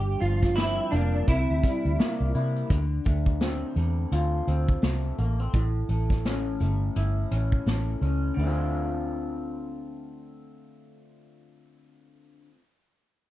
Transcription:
0.00 0.15 G1 loud
0.00 1.36 G2 medium
0.00 0.19 G4 loud
0.20 0.78 G1 medium
0.20 1.36 F3 medium
0.20 0.54 F4 medium
0.20 closed hi-hat medium
0.43 kick medium
0.43 snare soft
0.43 closed hi-hat medium
0.56 2.02 C4 medium
0.56 0.93 E4 medium
0.56 snare loud
0.56 closed hi-hat medium
0.91 1.21 F1 medium
0.91 1.36 A#3 medium
0.91 1.28 D4 medium
0.91 closed hi-hat medium
1.14 closed hi-hat medium
1.27 1.45 C2 medium
1.27 2.70 C3 medium
1.27 2.30 E4 medium
1.27 kick medium
1.27 closed hi-hat medium
1.50 1.61 D2 medium
1.63 2.78 G3 medium
1.63 kick medium
1.63 closed hi-hat medium
1.85 1.96 D2 medium
1.85 closed hi-hat soft
1.99 2.78 A#3 medium
1.99 snare loud
1.99 closed hi-hat medium
2.20 2.32 C2 medium
2.34 2.63 C3 medium
2.34 2.79 E4 medium
2.34 closed hi-hat medium
2.56 closed hi-hat medium
2.70 2.98 D2 medium
2.70 5.54 D3 medium
2.70 kick loud
2.70 closed hi-hat medium
3.05 3.62 D2 medium
3.05 3.77 A3 medium
3.05 kick medium
3.05 closed hi-hat medium
3.26 kick medium
3.41 4.47 C4 medium
3.41 snare medium
3.41 closed hi-hat medium
3.76 4.04 E2 medium
3.76 4.83 A3 medium
3.76 closed hi-hat medium
4.12 4.40 D2 medium
4.12 5.62 F4 medium
4.12 closed hi-hat medium
4.47 4.76 D2 medium
4.47 5.18 C4 medium
4.47 closed hi-hat medium
4.69 kick medium
4.83 5.11 C2 medium
4.83 5.89 A3 medium
4.83 snare loud
4.83 closed hi-hat medium
5.18 5.47 A1 medium
5.18 5.40 A#3 medium
5.18 closed hi-hat medium
5.40 5.62 C4 soft
5.54 5.82 A1 medium
5.54 8.37 A2 medium
5.54 kick medium
5.54 closed hi-hat medium
5.89 6.62 A1 medium
5.89 6.61 A3 medium
5.89 closed hi-hat medium
6.10 kick medium
6.10 snare soft
6.25 7.30 C#4 medium
6.25 snare medium
6.25 closed hi-hat medium
6.60 6.88 G1 medium
6.60 7.67 A3 medium
6.60 closed hi-hat medium
6.96 7.24 G1 medium
6.96 8.46 E4 medium
6.96 closed hi-hat medium
7.31 7.59 A1 medium
7.31 8.01 C#4 medium
7.31 closed hi-hat medium
7.52 kick medium
7.66 7.94 A1 medium
7.66 8.39 A3 medium
7.66 snare loud
7.66 closed hi-hat medium
8.01 8.30 C#2 medium
8.01 8.43 C#4 medium
8.01 closed hi-hat medium
8.34 12.46 D2 medium
8.34 12.48 D3 medium
8.40 12.53 A3 medium
8.44 12.57 C4 medium
8.44 12.61 F4 medium

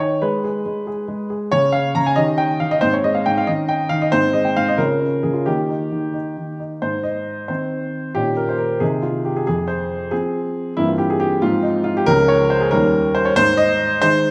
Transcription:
0.00 0.21 D#3 soft
0.00 0.21 D#4 medium
0.00 0.19 A#4 soft
0.00 0.22 C#5 medium
0.22 0.64 G#3 medium
0.22 1.48 D#4 soft
0.22 0.43 G#4 soft
0.22 1.30 B4 medium
0.44 0.85 G#4 soft
0.66 1.07 G#3 soft
0.87 1.28 G#4 medium
1.08 1.50 G#3 medium
1.30 1.51 G#4 medium
1.51 1.94 C#3 medium
1.51 1.72 C#4 soft
1.51 2.14 G#4 soft
1.51 1.73 C#5 loud
1.72 2.15 C#4 soft
1.72 1.95 F5 medium
1.95 2.17 C#3 medium
1.95 2.06 A#5 medium
2.06 2.17 G#5 medium
2.16 2.59 D#3 medium
2.16 2.78 C#4 soft
2.16 2.78 G4 soft
2.16 2.38 D#5 loud
2.38 2.80 D#4 soft
2.38 2.60 G5 medium
2.60 2.82 D#3 medium
2.60 2.71 F5 medium
2.71 2.82 D#5 medium
2.81 3.25 G#2 medium
2.81 3.43 C4 soft
2.81 3.43 D#4 soft
2.81 2.93 C5 loud
2.93 3.04 C#5 medium
3.04 3.46 G#3 medium
3.04 3.15 D#5 medium
3.15 3.26 F5 medium
3.26 3.47 G#2 medium
3.26 3.37 G5 medium
3.38 3.48 F5 medium
3.47 3.88 D#3 medium
3.47 4.09 C#4 soft
3.47 3.67 D#4 soft
3.47 3.69 D#5 medium
3.69 4.11 D#4 soft
3.69 3.91 G5 medium
3.89 4.11 D#3 medium
3.89 4.01 F5 loud
4.02 4.13 D#5 medium
4.12 4.55 G#2 medium
4.12 4.75 C4 soft
4.12 4.75 D#4 soft
4.12 4.34 C5 loud
4.33 4.77 G#3 medium
4.33 4.45 D#5 medium
4.45 4.56 G5 medium
4.56 4.78 G#2 medium
4.56 4.68 F5 medium
4.68 4.79 D#5 medium
4.78 5.22 C#3 medium
4.78 4.99 C#4 soft
4.78 5.32 F4 soft
4.78 5.24 A#4 medium
5.00 5.45 C#4 soft
5.23 5.46 C#3 soft
5.23 5.35 G#4 medium
5.33 5.46 F4 medium
5.46 5.90 D#3 medium
5.46 6.79 A#3 soft
5.46 5.67 D#4 soft
5.46 6.60 G4 medium
5.69 6.12 D#4 soft
5.92 6.35 D#3 soft
6.13 6.58 D#4 soft
6.37 6.82 D#3 soft
6.60 6.82 D#4 soft
6.82 7.47 G#2 soft
6.82 7.05 C5 medium
7.03 7.49 D#5 medium
7.48 8.11 D#3 soft
7.48 8.11 C4 soft
7.48 8.11 D#4 soft
7.48 8.15 C5 medium
8.15 8.79 A#2 soft
8.15 8.77 D#3 soft
8.15 8.77 C#4 soft
8.15 8.78 D#4 soft
8.15 8.37 G4 medium
8.36 8.48 A#4 medium
8.49 8.59 C5 medium
8.58 8.81 A#4 medium
8.80 9.44 C3 medium
8.80 9.42 D#3 soft
8.80 9.42 C4 soft
8.80 9.43 D#4 soft
8.80 9.03 G#4 medium
9.02 9.24 F4 medium
9.25 9.36 G4 medium
9.36 9.45 G#4 medium
9.47 10.10 F2 medium
9.47 9.68 G#4 medium
9.68 10.11 C5 medium
10.11 10.73 F3 soft
10.11 10.73 C4 soft
10.11 10.76 G#4 medium
10.77 11.40 G2 medium
10.77 11.38 E3 soft
10.77 11.38 A#3 soft
10.77 11.39 C4 soft
10.77 10.87 E4 medium
10.88 10.99 F4 medium
10.98 11.09 G4 medium
11.10 11.20 G#4 medium
11.20 11.42 G4 medium
11.42 12.05 G#2 medium
11.42 12.03 F3 soft
11.42 12.04 G#3 soft
11.42 12.04 C4 soft
11.42 11.64 F4 medium
11.63 11.85 D#4 medium
11.84 11.96 F4 medium
11.97 12.07 G4 medium
12.06 12.70 C#2 medium
12.06 12.68 F3 medium
12.06 12.68 G#3 medium
12.06 12.69 C#4 medium
12.06 12.28 A#4 loud
12.28 12.50 C#5 medium
12.50 12.61 C5 medium
12.61 12.72 G#4 medium
12.71 13.35 D#2 medium
12.71 13.33 D#3 soft
12.71 13.34 G3 medium
12.71 13.34 C#4 medium
12.71 13.15 A#4 loud
13.15 13.26 C5 medium
13.25 13.37 C#5 medium
13.36 14.00 G#2 medium
13.36 13.58 C5 loud
13.57 14.02 D#5 loud
14.02 14.31 D#3 medium
14.02 14.31 G#3 medium
14.02 14.31 D#4 medium
14.02 14.31 C5 loud

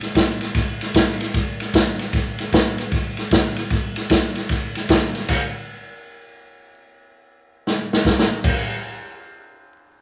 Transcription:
0.01 snare soft
0.01 ride medium
0.15 kick medium
0.15 snare loud
0.15 ride medium
0.41 snare soft
0.41 ride medium
0.55 kick medium
0.55 snare soft
0.55 ride loud
0.81 snare soft
0.81 ride medium
0.94 kick medium
0.94 snare loud
0.94 ride medium
1.21 snare soft
1.21 ride medium
1.34 kick medium
1.34 snare soft
1.34 ride medium
1.60 snare soft
1.60 ride medium
1.74 kick medium
1.74 snare loud
1.74 ride medium
1.99 snare soft
1.99 ride medium
2.13 kick medium
2.13 snare soft
2.13 ride medium
2.39 snare soft
2.39 ride medium
2.52 kick medium
2.52 snare loud
2.52 ride medium
2.78 snare soft
2.78 ride medium
2.92 kick medium
2.92 snare soft
2.92 ride medium
3.17 snare soft
3.17 ride medium
3.31 kick medium
3.31 snare loud
3.31 ride medium
3.56 snare soft
3.56 ride medium
3.70 kick medium
3.70 snare soft
3.70 ride medium
3.96 snare soft
3.96 ride medium
4.10 kick medium
4.10 snare loud
4.10 ride medium
4.35 snare soft
4.35 ride medium
4.49 kick medium
4.49 snare soft
4.49 ride medium
4.75 snare soft
4.75 ride medium
4.89 kick medium
4.89 snare loud
4.89 ride medium
5.15 snare soft
5.15 ride medium
5.28 kick medium
5.28 snare soft
5.28 crash medium
5.28 ride medium
7.67 snare medium
7.93 snare medium
8.05 kick medium
8.05 snare medium
8.19 snare loud
8.44 kick loud
8.44 crash medium

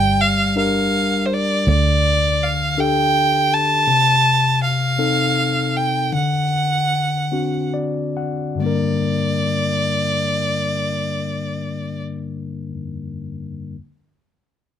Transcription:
0.00 1.63 G1 medium
0.00 1.63 G3 medium
0.00 0.23 G5 loud
0.21 0.57 F5 medium
0.56 1.64 D4 soft
0.56 1.64 G4 soft
0.56 1.64 A#4 soft
0.56 1.28 F5 medium
1.26 1.35 C5 soft
1.34 1.69 D5 medium
1.67 3.84 D2 medium
1.67 3.84 D3 soft
1.67 2.45 D5 medium
2.43 2.82 F5 medium
2.78 3.84 D4 soft
2.78 3.85 G4 soft
2.78 3.85 A4 soft
2.78 3.55 G5 medium
3.54 4.63 A5 medium
3.87 6.09 C3 medium
4.64 5.78 F5 medium
4.98 6.09 C4 soft
4.98 6.10 D#4 soft
4.98 6.10 A4 soft
5.77 6.14 G5 medium
6.13 8.56 D3 soft
6.13 7.72 F#5 medium
7.32 8.57 C4 soft
7.32 8.57 D4 soft
7.32 8.58 F#4 soft
7.74 8.14 D5 soft
8.17 8.58 F#5 soft
8.55 12.67 G2 soft
8.55 12.69 D3 soft
8.60 12.70 G3 soft
8.60 12.71 A#3 soft
8.64 12.72 D4 soft
8.64 12.73 A#4 soft
8.64 12.02 D5 medium

